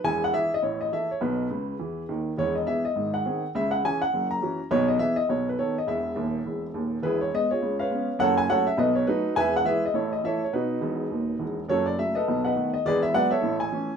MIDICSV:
0, 0, Header, 1, 2, 480
1, 0, Start_track
1, 0, Key_signature, 4, "major"
1, 0, Tempo, 290839
1, 81, Time_signature, 4, 2, 24, 8
1, 23049, End_track
2, 0, Start_track
2, 0, Title_t, "Upright piano"
2, 0, Program_c, 0, 0
2, 67, Note_on_c, 0, 40, 76
2, 68, Note_on_c, 0, 28, 67
2, 75, Note_on_c, 0, 80, 93
2, 349, Note_off_c, 0, 80, 0
2, 398, Note_on_c, 0, 78, 84
2, 480, Note_off_c, 0, 40, 0
2, 481, Note_off_c, 0, 28, 0
2, 535, Note_off_c, 0, 78, 0
2, 545, Note_on_c, 0, 52, 42
2, 552, Note_on_c, 0, 64, 42
2, 557, Note_on_c, 0, 68, 48
2, 557, Note_on_c, 0, 76, 92
2, 814, Note_off_c, 0, 52, 0
2, 818, Note_off_c, 0, 64, 0
2, 822, Note_off_c, 0, 68, 0
2, 830, Note_off_c, 0, 76, 0
2, 893, Note_on_c, 0, 75, 76
2, 1024, Note_off_c, 0, 75, 0
2, 1031, Note_on_c, 0, 45, 48
2, 1036, Note_on_c, 0, 33, 44
2, 1039, Note_on_c, 0, 73, 55
2, 1281, Note_off_c, 0, 73, 0
2, 1330, Note_on_c, 0, 75, 61
2, 1443, Note_off_c, 0, 45, 0
2, 1446, Note_off_c, 0, 33, 0
2, 1495, Note_off_c, 0, 75, 0
2, 1522, Note_on_c, 0, 52, 35
2, 1528, Note_on_c, 0, 64, 35
2, 1536, Note_on_c, 0, 69, 41
2, 1536, Note_on_c, 0, 76, 75
2, 1786, Note_off_c, 0, 52, 0
2, 1790, Note_off_c, 0, 64, 0
2, 1795, Note_off_c, 0, 69, 0
2, 1802, Note_off_c, 0, 76, 0
2, 1836, Note_on_c, 0, 73, 56
2, 1974, Note_off_c, 0, 73, 0
2, 1997, Note_on_c, 0, 35, 54
2, 1998, Note_on_c, 0, 47, 59
2, 2012, Note_on_c, 0, 71, 63
2, 2407, Note_off_c, 0, 35, 0
2, 2407, Note_off_c, 0, 47, 0
2, 2481, Note_on_c, 0, 49, 56
2, 2489, Note_on_c, 0, 37, 50
2, 2841, Note_off_c, 0, 49, 0
2, 2846, Note_off_c, 0, 37, 0
2, 2957, Note_on_c, 0, 40, 37
2, 2958, Note_on_c, 0, 52, 40
2, 3319, Note_off_c, 0, 40, 0
2, 3319, Note_off_c, 0, 52, 0
2, 3447, Note_on_c, 0, 51, 49
2, 3453, Note_on_c, 0, 39, 42
2, 3472, Note_off_c, 0, 71, 0
2, 3804, Note_off_c, 0, 51, 0
2, 3808, Note_off_c, 0, 39, 0
2, 3919, Note_on_c, 0, 28, 60
2, 3930, Note_on_c, 0, 40, 65
2, 3937, Note_on_c, 0, 73, 83
2, 4171, Note_off_c, 0, 73, 0
2, 4210, Note_on_c, 0, 75, 56
2, 4328, Note_off_c, 0, 28, 0
2, 4334, Note_off_c, 0, 40, 0
2, 4375, Note_off_c, 0, 75, 0
2, 4397, Note_on_c, 0, 52, 36
2, 4404, Note_on_c, 0, 59, 36
2, 4405, Note_on_c, 0, 76, 80
2, 4410, Note_on_c, 0, 68, 45
2, 4644, Note_off_c, 0, 76, 0
2, 4662, Note_off_c, 0, 52, 0
2, 4667, Note_off_c, 0, 59, 0
2, 4672, Note_off_c, 0, 68, 0
2, 4700, Note_on_c, 0, 75, 70
2, 4876, Note_on_c, 0, 44, 44
2, 4884, Note_on_c, 0, 32, 45
2, 5102, Note_off_c, 0, 75, 0
2, 5178, Note_on_c, 0, 78, 67
2, 5287, Note_off_c, 0, 44, 0
2, 5291, Note_off_c, 0, 32, 0
2, 5372, Note_on_c, 0, 51, 42
2, 5376, Note_on_c, 0, 60, 34
2, 5391, Note_on_c, 0, 68, 39
2, 5633, Note_off_c, 0, 51, 0
2, 5636, Note_off_c, 0, 60, 0
2, 5647, Note_off_c, 0, 68, 0
2, 5748, Note_off_c, 0, 78, 0
2, 5855, Note_on_c, 0, 37, 68
2, 5860, Note_on_c, 0, 49, 68
2, 5867, Note_on_c, 0, 76, 82
2, 6097, Note_off_c, 0, 76, 0
2, 6124, Note_on_c, 0, 78, 78
2, 6258, Note_off_c, 0, 37, 0
2, 6261, Note_off_c, 0, 49, 0
2, 6292, Note_off_c, 0, 78, 0
2, 6334, Note_on_c, 0, 52, 37
2, 6345, Note_on_c, 0, 61, 41
2, 6350, Note_on_c, 0, 68, 46
2, 6355, Note_on_c, 0, 80, 88
2, 6582, Note_off_c, 0, 80, 0
2, 6595, Note_off_c, 0, 52, 0
2, 6603, Note_off_c, 0, 61, 0
2, 6607, Note_off_c, 0, 68, 0
2, 6627, Note_on_c, 0, 78, 83
2, 6814, Note_on_c, 0, 30, 44
2, 6819, Note_on_c, 0, 42, 49
2, 7027, Note_off_c, 0, 78, 0
2, 7107, Note_on_c, 0, 82, 72
2, 7217, Note_off_c, 0, 30, 0
2, 7221, Note_off_c, 0, 42, 0
2, 7290, Note_on_c, 0, 52, 42
2, 7298, Note_on_c, 0, 61, 38
2, 7305, Note_on_c, 0, 66, 42
2, 7553, Note_off_c, 0, 52, 0
2, 7558, Note_off_c, 0, 61, 0
2, 7563, Note_off_c, 0, 66, 0
2, 7674, Note_off_c, 0, 82, 0
2, 7771, Note_on_c, 0, 35, 72
2, 7774, Note_on_c, 0, 47, 74
2, 7776, Note_on_c, 0, 73, 98
2, 8011, Note_off_c, 0, 73, 0
2, 8055, Note_on_c, 0, 75, 69
2, 8176, Note_off_c, 0, 35, 0
2, 8178, Note_off_c, 0, 47, 0
2, 8219, Note_off_c, 0, 75, 0
2, 8235, Note_on_c, 0, 59, 44
2, 8238, Note_on_c, 0, 52, 44
2, 8240, Note_on_c, 0, 76, 96
2, 8241, Note_on_c, 0, 68, 48
2, 8483, Note_off_c, 0, 76, 0
2, 8502, Note_off_c, 0, 59, 0
2, 8504, Note_off_c, 0, 52, 0
2, 8506, Note_off_c, 0, 68, 0
2, 8519, Note_on_c, 0, 75, 82
2, 8690, Note_off_c, 0, 75, 0
2, 8731, Note_on_c, 0, 35, 42
2, 8732, Note_on_c, 0, 47, 48
2, 8743, Note_on_c, 0, 73, 66
2, 9008, Note_off_c, 0, 73, 0
2, 9061, Note_on_c, 0, 71, 60
2, 9137, Note_off_c, 0, 35, 0
2, 9137, Note_off_c, 0, 47, 0
2, 9190, Note_off_c, 0, 71, 0
2, 9221, Note_on_c, 0, 51, 36
2, 9223, Note_on_c, 0, 73, 68
2, 9224, Note_on_c, 0, 59, 37
2, 9236, Note_on_c, 0, 69, 43
2, 9481, Note_off_c, 0, 51, 0
2, 9483, Note_off_c, 0, 59, 0
2, 9488, Note_off_c, 0, 73, 0
2, 9492, Note_off_c, 0, 69, 0
2, 9544, Note_on_c, 0, 75, 61
2, 9672, Note_off_c, 0, 75, 0
2, 9687, Note_on_c, 0, 40, 59
2, 9690, Note_on_c, 0, 28, 53
2, 9705, Note_on_c, 0, 76, 74
2, 10071, Note_off_c, 0, 40, 0
2, 10073, Note_off_c, 0, 28, 0
2, 10160, Note_on_c, 0, 39, 59
2, 10163, Note_on_c, 0, 27, 61
2, 10523, Note_off_c, 0, 39, 0
2, 10524, Note_off_c, 0, 27, 0
2, 10647, Note_on_c, 0, 28, 38
2, 10647, Note_on_c, 0, 40, 38
2, 10922, Note_off_c, 0, 76, 0
2, 11007, Note_off_c, 0, 28, 0
2, 11007, Note_off_c, 0, 40, 0
2, 11122, Note_on_c, 0, 27, 50
2, 11126, Note_on_c, 0, 39, 51
2, 11484, Note_off_c, 0, 27, 0
2, 11486, Note_off_c, 0, 39, 0
2, 11591, Note_on_c, 0, 40, 58
2, 11592, Note_on_c, 0, 28, 59
2, 11605, Note_on_c, 0, 71, 77
2, 11626, Note_on_c, 0, 64, 57
2, 11628, Note_on_c, 0, 68, 56
2, 11847, Note_off_c, 0, 71, 0
2, 11881, Note_off_c, 0, 64, 0
2, 11882, Note_off_c, 0, 68, 0
2, 11899, Note_on_c, 0, 73, 67
2, 12006, Note_off_c, 0, 28, 0
2, 12006, Note_off_c, 0, 40, 0
2, 12063, Note_off_c, 0, 73, 0
2, 12110, Note_on_c, 0, 56, 39
2, 12117, Note_on_c, 0, 59, 39
2, 12124, Note_on_c, 0, 75, 82
2, 12349, Note_off_c, 0, 75, 0
2, 12368, Note_off_c, 0, 56, 0
2, 12373, Note_off_c, 0, 59, 0
2, 12392, Note_on_c, 0, 73, 70
2, 12408, Note_on_c, 0, 65, 49
2, 12410, Note_on_c, 0, 68, 45
2, 12572, Note_on_c, 0, 49, 43
2, 12575, Note_on_c, 0, 37, 44
2, 12791, Note_off_c, 0, 73, 0
2, 12837, Note_off_c, 0, 65, 0
2, 12838, Note_off_c, 0, 68, 0
2, 12864, Note_on_c, 0, 77, 63
2, 12882, Note_on_c, 0, 71, 52
2, 12882, Note_on_c, 0, 73, 53
2, 12978, Note_off_c, 0, 49, 0
2, 12980, Note_off_c, 0, 37, 0
2, 13052, Note_on_c, 0, 56, 38
2, 13055, Note_on_c, 0, 59, 37
2, 13071, Note_on_c, 0, 61, 42
2, 13315, Note_off_c, 0, 56, 0
2, 13317, Note_off_c, 0, 59, 0
2, 13328, Note_off_c, 0, 61, 0
2, 13434, Note_off_c, 0, 77, 0
2, 13497, Note_off_c, 0, 71, 0
2, 13497, Note_off_c, 0, 73, 0
2, 13519, Note_on_c, 0, 30, 72
2, 13519, Note_on_c, 0, 42, 75
2, 13530, Note_on_c, 0, 78, 99
2, 13551, Note_on_c, 0, 69, 80
2, 13552, Note_on_c, 0, 73, 70
2, 13770, Note_off_c, 0, 78, 0
2, 13803, Note_off_c, 0, 69, 0
2, 13803, Note_off_c, 0, 73, 0
2, 13823, Note_on_c, 0, 80, 95
2, 13931, Note_off_c, 0, 30, 0
2, 13931, Note_off_c, 0, 42, 0
2, 13985, Note_off_c, 0, 80, 0
2, 14010, Note_on_c, 0, 54, 44
2, 14022, Note_on_c, 0, 57, 42
2, 14023, Note_on_c, 0, 78, 100
2, 14027, Note_on_c, 0, 61, 46
2, 14037, Note_on_c, 0, 69, 78
2, 14043, Note_on_c, 0, 73, 70
2, 14257, Note_off_c, 0, 78, 0
2, 14273, Note_off_c, 0, 54, 0
2, 14282, Note_off_c, 0, 57, 0
2, 14285, Note_off_c, 0, 61, 0
2, 14286, Note_off_c, 0, 69, 0
2, 14290, Note_off_c, 0, 73, 0
2, 14304, Note_on_c, 0, 76, 85
2, 14465, Note_off_c, 0, 76, 0
2, 14480, Note_on_c, 0, 47, 67
2, 14485, Note_on_c, 0, 35, 55
2, 14499, Note_on_c, 0, 75, 75
2, 14515, Note_on_c, 0, 71, 61
2, 14517, Note_on_c, 0, 69, 48
2, 14734, Note_off_c, 0, 75, 0
2, 14765, Note_off_c, 0, 71, 0
2, 14766, Note_off_c, 0, 69, 0
2, 14777, Note_on_c, 0, 73, 77
2, 14891, Note_off_c, 0, 47, 0
2, 14894, Note_off_c, 0, 35, 0
2, 14941, Note_off_c, 0, 73, 0
2, 14971, Note_on_c, 0, 54, 39
2, 14972, Note_on_c, 0, 71, 82
2, 14976, Note_on_c, 0, 57, 45
2, 14995, Note_on_c, 0, 63, 65
2, 14995, Note_on_c, 0, 66, 61
2, 15233, Note_off_c, 0, 54, 0
2, 15237, Note_off_c, 0, 57, 0
2, 15377, Note_off_c, 0, 71, 0
2, 15428, Note_off_c, 0, 63, 0
2, 15428, Note_off_c, 0, 66, 0
2, 15438, Note_on_c, 0, 40, 78
2, 15445, Note_on_c, 0, 28, 64
2, 15452, Note_on_c, 0, 80, 103
2, 15472, Note_on_c, 0, 76, 84
2, 15473, Note_on_c, 0, 71, 81
2, 15721, Note_off_c, 0, 80, 0
2, 15758, Note_off_c, 0, 71, 0
2, 15758, Note_off_c, 0, 76, 0
2, 15785, Note_on_c, 0, 78, 91
2, 15849, Note_off_c, 0, 40, 0
2, 15853, Note_off_c, 0, 28, 0
2, 15913, Note_off_c, 0, 78, 0
2, 15919, Note_on_c, 0, 52, 39
2, 15933, Note_on_c, 0, 56, 40
2, 15934, Note_on_c, 0, 76, 89
2, 15937, Note_on_c, 0, 64, 44
2, 15954, Note_on_c, 0, 71, 69
2, 15957, Note_on_c, 0, 68, 67
2, 16184, Note_off_c, 0, 52, 0
2, 16195, Note_off_c, 0, 56, 0
2, 16197, Note_off_c, 0, 64, 0
2, 16203, Note_off_c, 0, 76, 0
2, 16238, Note_off_c, 0, 71, 0
2, 16240, Note_off_c, 0, 68, 0
2, 16265, Note_on_c, 0, 75, 68
2, 16392, Note_off_c, 0, 75, 0
2, 16401, Note_on_c, 0, 33, 50
2, 16402, Note_on_c, 0, 45, 54
2, 16417, Note_on_c, 0, 73, 58
2, 16430, Note_on_c, 0, 69, 46
2, 16434, Note_on_c, 0, 64, 49
2, 16652, Note_off_c, 0, 73, 0
2, 16681, Note_off_c, 0, 69, 0
2, 16683, Note_off_c, 0, 64, 0
2, 16709, Note_on_c, 0, 75, 58
2, 16811, Note_off_c, 0, 33, 0
2, 16811, Note_off_c, 0, 45, 0
2, 16868, Note_off_c, 0, 75, 0
2, 16897, Note_on_c, 0, 52, 38
2, 16906, Note_on_c, 0, 57, 37
2, 16911, Note_on_c, 0, 64, 42
2, 16912, Note_on_c, 0, 76, 75
2, 16930, Note_on_c, 0, 69, 57
2, 16932, Note_on_c, 0, 73, 57
2, 17157, Note_off_c, 0, 52, 0
2, 17164, Note_off_c, 0, 57, 0
2, 17168, Note_off_c, 0, 64, 0
2, 17172, Note_off_c, 0, 76, 0
2, 17206, Note_off_c, 0, 69, 0
2, 17208, Note_off_c, 0, 73, 0
2, 17233, Note_on_c, 0, 73, 54
2, 17357, Note_off_c, 0, 73, 0
2, 17382, Note_on_c, 0, 47, 55
2, 17386, Note_on_c, 0, 71, 65
2, 17405, Note_on_c, 0, 63, 50
2, 17411, Note_on_c, 0, 66, 45
2, 17759, Note_off_c, 0, 47, 0
2, 17841, Note_on_c, 0, 28, 59
2, 17843, Note_on_c, 0, 40, 54
2, 18202, Note_off_c, 0, 28, 0
2, 18203, Note_off_c, 0, 40, 0
2, 18328, Note_on_c, 0, 39, 40
2, 18330, Note_on_c, 0, 27, 32
2, 18686, Note_off_c, 0, 39, 0
2, 18688, Note_off_c, 0, 27, 0
2, 18801, Note_on_c, 0, 40, 46
2, 18802, Note_on_c, 0, 28, 46
2, 18840, Note_off_c, 0, 71, 0
2, 19040, Note_off_c, 0, 63, 0
2, 19043, Note_off_c, 0, 66, 0
2, 19161, Note_off_c, 0, 40, 0
2, 19162, Note_off_c, 0, 28, 0
2, 19285, Note_on_c, 0, 42, 65
2, 19288, Note_on_c, 0, 30, 60
2, 19300, Note_on_c, 0, 73, 90
2, 19314, Note_on_c, 0, 66, 61
2, 19316, Note_on_c, 0, 69, 65
2, 19533, Note_off_c, 0, 73, 0
2, 19562, Note_off_c, 0, 66, 0
2, 19564, Note_off_c, 0, 69, 0
2, 19571, Note_on_c, 0, 74, 72
2, 19692, Note_off_c, 0, 42, 0
2, 19693, Note_off_c, 0, 30, 0
2, 19736, Note_off_c, 0, 74, 0
2, 19776, Note_on_c, 0, 49, 44
2, 19780, Note_on_c, 0, 54, 36
2, 19786, Note_on_c, 0, 76, 85
2, 19792, Note_on_c, 0, 57, 44
2, 20016, Note_off_c, 0, 76, 0
2, 20036, Note_off_c, 0, 49, 0
2, 20039, Note_off_c, 0, 54, 0
2, 20048, Note_off_c, 0, 57, 0
2, 20054, Note_on_c, 0, 75, 70
2, 20075, Note_on_c, 0, 71, 53
2, 20081, Note_on_c, 0, 69, 58
2, 20265, Note_on_c, 0, 35, 44
2, 20266, Note_on_c, 0, 47, 49
2, 20458, Note_off_c, 0, 75, 0
2, 20507, Note_off_c, 0, 71, 0
2, 20510, Note_off_c, 0, 69, 0
2, 20540, Note_on_c, 0, 78, 64
2, 20564, Note_on_c, 0, 71, 54
2, 20564, Note_on_c, 0, 75, 45
2, 20663, Note_off_c, 0, 35, 0
2, 20663, Note_off_c, 0, 47, 0
2, 20734, Note_on_c, 0, 51, 39
2, 20734, Note_on_c, 0, 57, 33
2, 20737, Note_on_c, 0, 59, 40
2, 20941, Note_off_c, 0, 78, 0
2, 20992, Note_off_c, 0, 71, 0
2, 20992, Note_off_c, 0, 75, 0
2, 20994, Note_off_c, 0, 51, 0
2, 20994, Note_off_c, 0, 57, 0
2, 20997, Note_off_c, 0, 59, 0
2, 21018, Note_on_c, 0, 75, 69
2, 21180, Note_off_c, 0, 75, 0
2, 21217, Note_on_c, 0, 28, 66
2, 21219, Note_on_c, 0, 40, 71
2, 21225, Note_on_c, 0, 74, 96
2, 21248, Note_on_c, 0, 71, 64
2, 21252, Note_on_c, 0, 68, 74
2, 21455, Note_off_c, 0, 74, 0
2, 21489, Note_off_c, 0, 71, 0
2, 21491, Note_off_c, 0, 68, 0
2, 21496, Note_on_c, 0, 76, 89
2, 21618, Note_off_c, 0, 28, 0
2, 21619, Note_off_c, 0, 40, 0
2, 21658, Note_off_c, 0, 76, 0
2, 21685, Note_on_c, 0, 54, 44
2, 21693, Note_on_c, 0, 56, 48
2, 21694, Note_on_c, 0, 78, 103
2, 21703, Note_on_c, 0, 59, 42
2, 21717, Note_on_c, 0, 74, 73
2, 21718, Note_on_c, 0, 71, 70
2, 21929, Note_off_c, 0, 78, 0
2, 21947, Note_off_c, 0, 54, 0
2, 21954, Note_off_c, 0, 56, 0
2, 21961, Note_off_c, 0, 59, 0
2, 21961, Note_on_c, 0, 76, 81
2, 21963, Note_off_c, 0, 74, 0
2, 21964, Note_off_c, 0, 71, 0
2, 21975, Note_on_c, 0, 73, 63
2, 21980, Note_on_c, 0, 69, 60
2, 22149, Note_on_c, 0, 45, 59
2, 22152, Note_on_c, 0, 33, 55
2, 22370, Note_off_c, 0, 76, 0
2, 22416, Note_off_c, 0, 73, 0
2, 22419, Note_off_c, 0, 69, 0
2, 22445, Note_on_c, 0, 80, 74
2, 22562, Note_off_c, 0, 45, 0
2, 22564, Note_off_c, 0, 33, 0
2, 22647, Note_on_c, 0, 52, 45
2, 22659, Note_on_c, 0, 57, 43
2, 22668, Note_on_c, 0, 61, 47
2, 22909, Note_off_c, 0, 52, 0
2, 22918, Note_off_c, 0, 57, 0
2, 22924, Note_off_c, 0, 61, 0
2, 23020, Note_off_c, 0, 80, 0
2, 23049, End_track
0, 0, End_of_file